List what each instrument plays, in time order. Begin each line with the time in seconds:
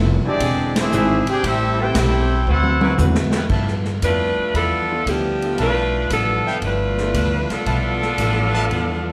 Already playing: upright bass F1, hollow-body jazz guitar G2 F3 B3 E4, saxophone section F3 B3 A4, grand piano A3 D4 E4 F4 B4
0.24 trombone section D3 G#3 D4, grand piano G#3 D4 E4 G4 D5, trumpet section C4 G4 G#4 D5, muted upright bass stroke
0.40 upright bass E1, hollow-body jazz guitar E3 C4 D4 G#4, kick, ride
0.76 trombone section G#3 C4 E4, trumpet section D4 G#4 C5 E5, snare, ride
0.91 upright bass G#1, hollow-body jazz guitar E3 C4 D4 G#4, saxophone section E3 C4 D4 G#4, hi-hat pedal
1.27 trombone section C4 D4 G4, trumpet section D4 G#4 C5 G5, muted upright bass stroke, ride
1.43 upright bass A1, hollow-body jazz guitar A2 G3 C4 E4, trombone section G3 C4 E4, trumpet section C4 G4 A4 E5, kick, ride
1.80 grand piano A3 C4 E4 G4 B4, trombone section C4 E4 G4, trumpet section E4 A4 C5 G5
1.92 upright bass B1, hollow-body jazz guitar A2, trombone section C4 E4 G4, trumpet section E4 A4 C5 F#5 G5, kick, snare, hi-hat pedal, ride
1.97 hollow-body jazz guitar G3 C4 E4
2.45 upright bass D2, hollow-body jazz guitar D3 C4, trombone section A3 C4 F#4, trumpet section E4 A4 C5 F#5
2.49 hollow-body jazz guitar F#4 B4
2.63 high tom
2.81 saxophone section F#3 C4 E4 B4, high tom
2.98 upright bass E2, hollow-body jazz guitar D3 C4 F#4 B4, grand piano A3 C4 E4 F#4 B4, hi-hat pedal, mid tom
3.15 snare
3.31 saxophone section G2 F3 B3 E4 B4, snare
3.49 upright bass G2, hollow-body jazz guitar G2 F3 B3, trumpet section B4 E5 F5 A5, kick, crash
3.54 hollow-body jazz guitar E4
3.67 snare
3.85 snare
4.02 upright bass F2, hollow-body jazz guitar G2 F3 B3 E4, saxophone section A3 D4 F4 B4, kick, hi-hat pedal, ride
4.38 muted upright bass stroke
4.54 upright bass E2, hollow-body jazz guitar G2 F3 B3 E4, saxophone section B3 D4 F4 A4, trumpet section B4 E5 F5 B5, kick, ride
4.90 grand piano B3 D4 E4 F4 A4
5.06 upright bass D2, hollow-body jazz guitar G2 F3 B3 E4, saxophone section F3 B3 D4 G4, kick, hi-hat pedal, ride
5.42 grand piano B3 D4 E4 F4 A4, ride
5.58 upright bass B1, hollow-body jazz guitar G2 F3 B3 E4, saxophone section A3 D4 F4 B4, trumpet section B4 E5 F5 A5, kick, ride
6.10 upright bass A1, hollow-body jazz guitar G2 F3 B3 E4, saxophone section F3 B3 D4 A4, kick, hi-hat pedal, ride
6.46 trumpet section B4 E5 F5 G5, muted upright bass stroke
6.61 upright bass G1, hollow-body jazz guitar G2 F3 B3, saxophone section A3 D4 F4 B4, kick, ride
6.65 hollow-body jazz guitar E4
6.98 grand piano B3 D4 E4 F4 A4, snare
7.14 upright bass D2, hollow-body jazz guitar G2 F3 B3 E4, kick, hi-hat pedal, ride
7.50 saxophone section B3 D4 F4 A4, muted upright bass stroke, snare, ride
7.66 upright bass B1, hollow-body jazz guitar G2 F3 B3 E4, trumpet section B4 E5 F5 A5, kick, ride
8.02 snare
8.18 upright bass A1, hollow-body jazz guitar G2 F3 B3 E4, kick, hi-hat pedal, ride
8.54 trumpet section B4 E5 F5 A5
8.70 upright bass E2, hollow-body jazz guitar G2 F3 B3 E4, kick, ride